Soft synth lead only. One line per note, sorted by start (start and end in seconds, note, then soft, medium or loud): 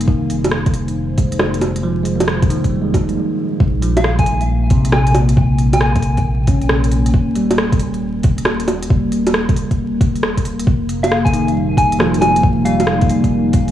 3.97 4.16 F5 medium
4.19 4.42 G#5 medium
4.93 5.17 G#5 medium
5.73 6.18 G#5 medium
11.03 11.22 F5 medium
11.25 11.48 G#5 medium
11.78 12.01 G#5 medium
12.21 12.45 G#5 medium
12.65 13.09 F5 medium